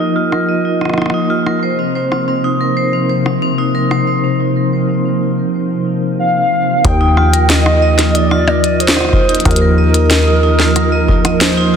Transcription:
0.00 11.76 F3 medium
0.00 6.85 A#3 medium
0.00 0.65 D#4 medium
0.00 6.85 D#4 medium
0.00 0.16 F4 medium
0.00 6.85 G4 medium
0.00 0.32 A#4 medium
0.00 0.49 D#5 medium
0.16 0.32 F4 medium
0.32 0.47 A#4 medium
0.32 cross-stick soft
0.49 0.63 D#5 medium
0.65 0.80 D#4 medium
0.81 0.96 D#5 medium
0.81 cross-stick soft
0.85 cross-stick soft
0.89 cross-stick soft
0.94 1.06 D#4 medium
0.94 cross-stick soft
0.98 cross-stick medium
1.02 cross-stick medium
1.06 cross-stick medium
1.10 1.28 D#4 medium
1.10 cross-stick medium
1.30 1.46 F4 medium
1.46 1.61 A#4 medium
1.46 cross-stick soft
1.63 6.85 C3 medium
1.63 1.77 C5 medium
1.79 1.95 C4 medium
1.95 2.10 C5 medium
2.12 2.20 C4 medium
2.12 cross-stick soft
2.28 2.42 C4 medium
2.44 2.60 D#4 medium
2.61 2.75 A#4 medium
2.77 2.91 C5 medium
2.93 3.09 C4 medium
3.09 3.24 C5 medium
3.26 3.34 C4 medium
3.26 cross-stick soft
3.42 3.56 C4 medium
3.58 3.74 D#4 medium
3.75 3.89 A#4 medium
3.91 4.05 C5 medium
3.91 cross-stick soft
4.07 4.23 C4 medium
6.19 6.86 F5 loud
6.85 9.42 D#2 medium
6.85 6.93 D#4 medium
6.85 7.49 G5 loud
6.85 kick loud
6.85 closed hi-hat medium
7.01 7.15 D#4 loud
7.08 11.76 A#3 medium
7.13 7.33 F4 loud
7.13 11.76 G4 medium
7.13 cross-stick medium
7.33 7.48 A#4 medium
7.33 closed hi-hat medium
7.50 7.64 D#5 medium
7.50 8.17 D#5 loud
7.50 snare loud
7.50 closed hi-hat medium
7.66 7.82 D#4 medium
7.66 cross-stick medium
7.73 11.76 D#4 medium
7.82 7.97 D#5 medium
7.99 8.07 D#4 medium
7.99 snare medium
7.99 closed hi-hat medium
8.15 8.29 D#4 loud
8.15 8.82 D5 loud
8.15 closed hi-hat medium
8.31 8.47 F4 loud
8.31 cross-stick medium
8.48 8.62 A#4 medium
8.48 percussion blips medium
8.64 8.78 D#5 medium
8.64 closed hi-hat medium
8.80 8.96 D#4 medium
8.80 9.47 C5 loud
8.80 closed hi-hat medium
8.88 snare loud
8.96 9.11 D#5 medium
8.96 cross-stick medium
9.01 cross-stick soft
9.05 cross-stick soft
9.09 cross-stick soft
9.13 9.21 D#4 medium
9.13 kick loud
9.13 cross-stick soft
9.17 cross-stick soft
9.21 cross-stick soft
9.25 cross-stick soft
9.29 9.43 D#4 loud
9.29 closed hi-hat soft
9.35 closed hi-hat soft
9.40 closed hi-hat soft
9.45 11.76 D#2 medium
9.45 9.61 F4 loud
9.45 11.43 A#4 loud
9.45 kick loud
9.45 cross-stick medium
9.45 closed hi-hat medium
9.51 closed hi-hat medium
9.56 closed hi-hat medium
9.62 9.76 A#4 medium
9.78 9.92 D#5 medium
9.94 10.10 D#4 medium
9.94 closed hi-hat medium
10.11 10.25 D#5 medium
10.11 cross-stick medium
10.11 snare loud
10.11 closed hi-hat medium
10.27 10.36 D#4 medium
10.43 10.58 D#4 loud
10.60 10.75 F4 loud
10.60 snare medium
10.76 10.90 A#4 medium
10.76 cross-stick medium
10.76 closed hi-hat medium
10.92 11.06 D#5 medium
11.08 11.24 D#4 medium
11.08 kick loud
11.25 11.39 D#5 medium
11.25 cross-stick medium
11.25 closed hi-hat medium
11.41 11.50 D#4 medium
11.41 11.76 C5 loud
11.41 snare loud
11.41 closed hi-hat medium
11.57 11.72 D#4 loud

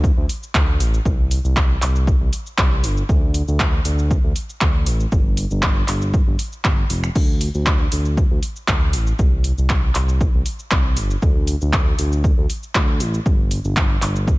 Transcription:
0.00 0.12 D2 medium
0.00 kick loud
0.04 shaker soft
0.17 0.26 D2 loud
0.29 open hi-hat medium
0.29 shaker medium
0.43 shaker medium
0.55 0.82 D2 medium
0.55 finger snap loud
0.55 kick loud
0.55 clap loud
0.55 shaker soft
0.80 0.99 A1 loud
0.80 open hi-hat medium
0.80 shaker medium
0.94 shaker medium
1.05 1.39 C2 loud
1.05 kick loud
1.05 shaker soft
1.31 open hi-hat medium
1.31 shaker medium
1.45 1.77 C2 loud
1.45 shaker medium
1.56 finger snap loud
1.56 kick loud
1.56 clap loud
1.56 shaker soft
1.82 2.15 C2 medium
1.82 clap medium
1.82 open hi-hat medium
1.82 shaker medium
1.96 shaker medium
2.07 kick loud
2.07 shaker soft
2.21 2.30 C2 loud
2.33 open hi-hat medium
2.33 shaker medium
2.46 shaker soft
2.58 2.85 C2 medium
2.58 finger snap loud
2.58 kick loud
2.58 clap loud
2.58 shaker soft
2.84 3.03 G1 loud
2.84 open hi-hat medium
2.84 shaker medium
2.97 shaker soft
3.09 3.42 D2 loud
3.09 kick loud
3.09 shaker soft
3.34 open hi-hat medium
3.34 shaker medium
3.48 3.80 D2 loud
3.48 shaker soft
3.60 finger snap loud
3.60 kick loud
3.60 clap loud
3.60 shaker soft
3.85 4.18 D2 medium
3.85 open hi-hat loud
3.85 shaker medium
3.99 shaker soft
4.11 kick loud
4.11 shaker soft
4.24 4.33 D2 loud
4.36 open hi-hat medium
4.36 shaker medium
4.49 shaker soft
4.61 4.88 D2 medium
4.61 finger snap loud
4.61 kick loud
4.61 clap loud
4.61 shaker soft
4.86 5.06 A1 loud
4.86 open hi-hat medium
4.86 shaker medium
5.00 shaker soft
5.12 5.46 G1 loud
5.12 kick loud
5.12 shaker soft
5.37 open hi-hat medium
5.37 shaker medium
5.51 5.83 G1 loud
5.51 shaker medium
5.63 finger snap loud
5.63 kick loud
5.63 clap loud
5.63 shaker soft
5.88 6.22 G1 medium
5.88 clap medium
5.88 open hi-hat loud
5.88 shaker medium
6.02 shaker soft
6.14 kick loud
6.14 shaker soft
6.27 6.36 G1 loud
6.39 open hi-hat medium
6.39 shaker medium
6.53 shaker medium
6.65 6.84 G1 medium
6.65 finger snap loud
6.65 kick loud
6.65 clap loud
6.65 shaker soft
6.90 7.09 F1 medium
6.90 open hi-hat medium
6.90 shaker medium
7.04 finger snap medium
7.04 shaker soft
7.15 7.49 D2 loud
7.15 kick loud
7.15 crash medium
7.15 shaker soft
7.41 open hi-hat medium
7.41 shaker medium
7.55 7.87 D2 loud
7.55 shaker medium
7.66 finger snap loud
7.66 kick loud
7.66 clap loud
7.66 shaker soft
7.92 8.25 D2 medium
7.92 open hi-hat loud
7.92 shaker loud
8.05 shaker medium
8.17 kick loud
8.17 shaker soft
8.31 8.40 D2 loud
8.43 open hi-hat loud
8.43 shaker medium
8.56 shaker medium
8.68 8.95 D2 medium
8.68 finger snap loud
8.68 kick loud
8.68 clap loud
8.68 shaker soft
8.93 9.13 A1 loud
8.93 open hi-hat medium
8.93 shaker medium
9.07 shaker medium
9.19 9.52 C2 loud
9.19 kick loud
9.19 shaker soft
9.44 open hi-hat medium
9.44 shaker medium
9.58 9.90 C2 loud
9.58 shaker medium
9.70 finger snap loud
9.70 kick loud
9.70 clap loud
9.70 shaker soft
9.95 10.29 C2 medium
9.95 clap medium
9.95 open hi-hat loud
9.95 shaker loud
10.09 shaker medium
10.21 kick loud
10.21 shaker soft
10.34 10.43 C2 loud
10.46 open hi-hat medium
10.46 shaker loud
10.59 shaker medium
10.71 10.98 C2 medium
10.71 finger snap loud
10.71 kick loud
10.71 clap loud
10.71 shaker soft
10.97 11.16 G1 loud
10.97 open hi-hat medium
10.97 shaker loud
11.10 shaker medium
11.22 11.56 D2 loud
11.22 kick loud
11.22 shaker soft
11.47 open hi-hat medium
11.47 shaker medium
11.61 11.94 D2 loud
11.61 shaker medium
11.73 finger snap loud
11.73 kick loud
11.73 clap medium
11.73 shaker soft
11.99 12.32 D2 medium
11.99 open hi-hat medium
11.99 shaker loud
12.12 shaker medium
12.24 kick loud
12.24 shaker soft
12.38 12.46 D2 loud
12.50 open hi-hat medium
12.50 shaker loud
12.63 shaker medium
12.75 13.01 D2 medium
12.75 finger snap loud
12.75 kick loud
12.75 clap loud
12.75 shaker soft
13.00 13.19 A1 loud
13.00 open hi-hat medium
13.00 shaker loud
13.14 shaker medium
13.26 13.59 G1 loud
13.26 kick loud
13.26 shaker soft
13.51 open hi-hat medium
13.51 shaker loud
13.65 13.97 G1 loud
13.65 shaker medium
13.77 finger snap loud
13.77 kick loud
13.77 clap loud
13.77 shaker soft
14.02 14.35 G1 medium
14.02 clap medium
14.02 open hi-hat medium
14.02 shaker loud
14.16 shaker medium
14.28 kick loud
14.28 shaker soft

